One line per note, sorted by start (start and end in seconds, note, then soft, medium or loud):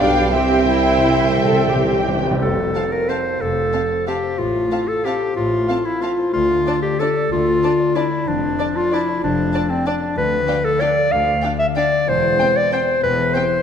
0.00 0.34 B1 medium
0.00 0.35 B1 medium
0.00 0.35 G2 medium
0.00 0.33 B3 medium
0.00 0.34 D4 medium
0.00 0.35 F4 medium
0.00 0.16 G4 medium
0.00 0.33 G4 medium
0.00 0.35 B4 medium
0.00 0.33 D5 medium
0.00 0.33 F5 medium
0.00 0.35 F5 medium
0.00 0.32 G5 medium
0.17 1.20 G4 medium
0.33 2.26 C2 medium
0.33 0.40 C3 soft
0.33 1.37 C3 medium
0.33 2.05 C4 medium
0.33 0.65 C4 medium
0.33 0.65 G4 medium
0.33 2.08 C5 medium
0.33 2.25 E5 medium
0.33 2.22 G5 medium
0.42 0.48 C3 soft
0.49 0.56 C3 soft
0.49 1.54 E4 medium
0.57 0.64 C3 soft
0.65 0.72 C3 soft
0.65 1.35 E4 medium
0.65 1.03 C5 medium
0.86 1.89 E5 medium
0.98 1.05 C3 medium
1.04 1.13 C3 medium
1.04 1.72 C5 medium
1.14 1.21 C3 medium
1.22 1.28 C3 medium
1.22 2.25 G4 medium
1.30 1.36 C3 medium
1.37 1.44 C3 medium
1.37 2.43 C3 medium
1.37 1.73 A4 medium
1.45 1.51 C3 medium
1.52 1.59 C3 medium
1.52 2.43 E4 medium
1.60 1.66 C3 medium
1.67 1.75 C3 medium
1.72 1.83 C3 medium
1.72 2.42 G4 medium
1.72 2.07 C5 medium
1.84 1.91 C3 medium
1.91 1.98 C3 medium
1.91 2.43 E5 medium
2.00 2.07 C3 loud
2.08 2.14 C3 loud
2.08 3.25 C5 medium
2.15 2.22 C3 loud
2.23 2.30 C3 loud
2.23 2.44 G4 medium
2.31 2.38 C3 loud
2.41 2.69 F1 medium
2.41 3.39 F2 medium
2.41 2.70 F2 medium
2.41 2.93 A4 medium
2.58 3.55 C3 soft
2.75 2.84 C4 soft
2.75 3.71 A4 soft
2.75 2.84 F5 soft
2.75 2.83 A5 soft
2.92 3.10 A#4 medium
2.92 3.89 F5 soft
3.09 3.17 C4 soft
3.09 3.43 C5 medium
3.09 3.17 F5 soft
3.09 4.05 A5 soft
3.09 3.17 A5 soft
3.26 4.22 C5 soft
3.41 3.68 F1 medium
3.41 4.40 F2 medium
3.41 3.68 F2 medium
3.41 4.07 A4 medium
3.57 4.41 C3 soft
3.72 3.81 C4 soft
3.72 3.81 F5 soft
3.72 3.80 A5 soft
3.90 4.87 F5 soft
4.06 4.15 C4 soft
4.06 4.40 G4 medium
4.06 4.15 F5 soft
4.06 5.04 A5 soft
4.06 4.16 A5 soft
4.23 5.20 C5 soft
4.38 4.66 A1 medium
4.38 4.66 A2 medium
4.38 5.36 A2 medium
4.38 4.89 F4 medium
4.55 5.52 A3 soft
4.71 4.81 C4 soft
4.71 5.68 A4 soft
4.71 4.79 F5 medium
4.71 4.79 A5 soft
4.88 5.06 A4 medium
4.88 5.85 F5 soft
5.05 5.14 C4 soft
5.05 5.35 G4 medium
5.05 5.13 F5 soft
5.05 6.02 A5 soft
5.05 5.14 A5 soft
5.21 6.18 C5 soft
5.36 5.63 A1 medium
5.36 5.63 A2 medium
5.36 6.35 A2 medium
5.36 5.86 F4 medium
5.53 6.50 A3 soft
5.68 5.77 C4 medium
5.68 6.66 A4 soft
5.68 5.76 F5 soft
5.68 5.78 A5 medium
5.85 6.03 E4 medium
5.85 9.77 F5 soft
6.01 6.10 C4 medium
6.01 6.32 F4 medium
6.01 6.11 F5 medium
6.01 6.10 A5 soft
6.01 7.00 A5 medium
6.19 6.36 C5 soft
6.33 6.61 D2 medium
6.33 7.31 D3 medium
6.33 6.82 F4 medium
6.51 7.46 A3 soft
6.66 6.74 D4 medium
6.66 7.62 A4 soft
6.66 6.75 D5 medium
6.66 6.75 A5 soft
6.82 7.01 G4 medium
6.82 7.16 D5 medium
6.99 7.08 D4 medium
6.99 7.31 A4 medium
6.99 7.09 D5 medium
6.99 7.08 A5 medium
6.99 7.95 A5 medium
7.17 7.78 D5 medium
7.31 7.57 D2 medium
7.31 8.29 D3 medium
7.31 7.97 F4 medium
7.47 10.18 A3 soft
7.63 7.72 D4 medium
7.63 8.58 A4 medium
7.63 7.71 D5 medium
7.63 7.71 A5 medium
7.80 8.11 D5 medium
7.95 8.04 D4 medium
7.95 8.29 E4 medium
7.95 8.04 D5 medium
7.95 8.03 A5 medium
7.95 8.92 A5 medium
8.12 8.75 D5 medium
8.27 8.54 F1 medium
8.27 8.53 F2 medium
8.27 9.23 F3 medium
8.27 8.78 D4 medium
8.43 9.38 F4 medium
8.58 8.67 D4 medium
8.58 9.53 A4 medium
8.58 8.66 D5 medium
8.58 8.68 A5 medium
8.76 8.94 F4 medium
8.76 9.07 D5 medium
8.92 9.01 D4 medium
8.92 9.23 E4 medium
8.92 9.00 D5 medium
8.92 9.85 A5 medium
8.92 9.02 A5 medium
9.09 9.69 D5 medium
9.23 9.49 F1 medium
9.23 9.49 F2 medium
9.23 12.09 F3 medium
9.23 9.71 D4 medium
9.39 12.09 F4 medium
9.54 9.62 D4 medium
9.54 10.18 A4 medium
9.54 9.62 D5 medium
9.54 9.62 A5 medium
9.70 9.88 C4 medium
9.70 10.01 D5 medium
9.86 10.17 D4 medium
9.86 9.95 D4 medium
9.86 9.94 D5 medium
9.86 9.94 A5 medium
10.02 10.95 D5 medium
10.16 10.42 D2 medium
10.16 11.11 D3 medium
10.16 10.66 B4 medium
10.32 11.25 D4 soft
10.47 10.55 D4 medium
10.47 11.42 G4 medium
10.47 10.56 F5 medium
10.47 10.56 G5 medium
10.64 10.82 A4 medium
10.80 10.89 D4 medium
10.80 11.13 D5 medium
10.80 10.89 F5 medium
10.80 10.88 G5 medium
10.80 11.75 G5 medium
10.96 11.91 D5 soft
11.12 11.38 D2 medium
11.12 12.09 D3 medium
11.12 11.45 F5 loud
11.27 12.08 D4 soft
11.42 11.51 D4 medium
11.42 12.38 G4 medium
11.42 11.51 F5 medium
11.42 11.50 G5 medium
11.59 11.66 E5 medium
11.59 12.08 F5 medium
11.75 11.84 D4 medium
11.75 12.10 D5 medium
11.75 11.85 F5 medium
11.75 11.83 G5 medium
11.75 12.71 G5 medium
11.92 12.09 D5 medium
12.07 12.33 E1 medium
12.07 13.02 E2 medium
12.07 12.34 E2 medium
12.07 12.58 C5 medium
12.23 13.17 E3 soft
12.39 12.48 C4 medium
12.39 13.34 G4 medium
12.39 12.47 G5 medium
12.39 12.48 G5 medium
12.56 12.73 D5 medium
12.56 13.50 E5 medium
12.72 12.80 C4 medium
12.72 13.02 C5 medium
12.72 13.62 G5 medium
12.72 12.81 G5 medium
12.88 13.62 C5 soft
13.03 13.29 E1 medium
13.03 13.62 E2 medium
13.03 13.29 E2 medium
13.03 13.36 B4 medium
13.18 13.62 E3 soft
13.34 13.43 C4 medium
13.34 13.62 G4 soft
13.34 13.62 C5 medium
13.34 13.43 G5 medium
13.34 13.44 G5 medium
13.52 13.62 E5 soft